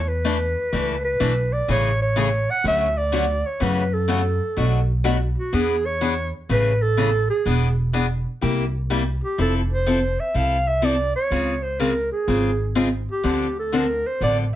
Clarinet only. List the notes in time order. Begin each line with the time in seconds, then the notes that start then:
0.08 B4
1.05 B4
1.53 D5
1.71 C#5
2.02 C#5
2.50 F#5
2.68 E5
2.98 D5
3.46 C#5
3.63 B4
3.94 A4
5.38 F#4
5.55 G#4
5.86 C#5
6.51 B4
6.82 A4
7.30 G#4
9.23 G4
9.41 A4
9.72 C5
10.20 E5
10.36 F5
10.68 E5
10.85 D5
11.16 C#5
11.63 C5
11.80 A#4
12.12 G#4
13.12 G4
13.59 A4
13.76 A#4
14.06 C5
14.24 D5